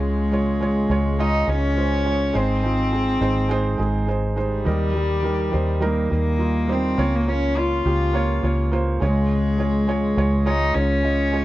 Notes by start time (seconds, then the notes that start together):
Already playing: C#2 C#3 G#3 F4 C#5
0.32 G#3 F4 C#5
0.60 G#3 F4 C#5
0.89 C#2 G#3 F4 C#5
1.19 G#3 D#4 F4 D#5
1.47 C#2 G#3 C#4 F4 C#5
1.76 G#3 F4 C5
2.04 G#3 F4 C#5
2.33 G#1 G#2 G#3 C4 D#4 C5
2.63 G#3 D#4 F4
2.92 G#3 D#4 G#4
3.20 G#1 G#3 D#4 C5
3.49 G#3 D#4 C5
3.78 G#1 G#3 D#4 G#4
4.07 G#3 D#4 C5
4.36 G3 G#3 D#4 C5
4.65 D#2 D#3 G3 D#4 A#4
4.94 G3 D#4 A#4
5.22 G3 D#4 A#4
5.52 D#2 G3 D#4 C5
5.80 G3 D#4 A#4
5.85 A#3
6.10 D#2 G3 A#3 D#4 A#4
6.38 G3 D#4 F4
6.68 G3 D#4 C5
6.72 C4
6.98 C#2 C#3 A#3 F4 C#5
7.16 A#3
7.26 A#3 C#4 F4 C#5
7.56 A#3 F4 C#5
7.85 C#2 A#3 F4 G4
8.13 A#3 F4 C#5
8.43 C#2 A#3 F4 C#5
8.71 A#3 F4 C5
9.00 C#2 C#3 G#3 F4 C#5
9.58 G#3 F4 C#5
9.87 G#3 F4 C#5
10.16 C#2 G#3 F4 C#5
10.45 G#3 D#4 F4 C#5
10.74 C#2 G#3 C#4 F4 C#5
11.03 G#3 F4 D#5
11.32 G#3 F4 C#5